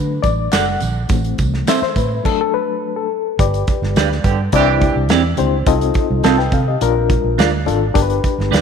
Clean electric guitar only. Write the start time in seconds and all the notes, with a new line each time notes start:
0.53 D4 F#4 A4 D5
1.67 C4 E4 A4 C5
3.97 D4 G4 B4 D5
5.10 C4 E4 G4 D5
6.24 C4 F4 A4 D#5
7.38 D4 F4 A#4 D5
8.51 D4 G4 B4 D5